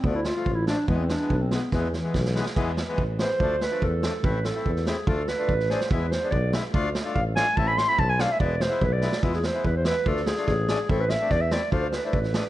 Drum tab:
CC |--------|--------|--------|x-------|
SD |--o---o-|--o---o-|o-o-oooo|--o---oo|
BD |o---o---|o---o---|o---o---|o---o---|

CC |--------|--------|--------|--------|
SD |--o---o-|--o--oo-|--o--ooo|--o---o-|
BD |o---o---|o---o---|o---o---|o---o---|

CC |--------|--------|--------|--------|
SD |--o---o-|--o---o-|--o---oo|-oo---o-|
BD |o---o---|o---o---|o---o---|o---o---|

CC |--------|--------|--------|
SD |-oooo-o-|--o-o-o-|--o--oo-|
BD |o---o---|o---o---|o---o---|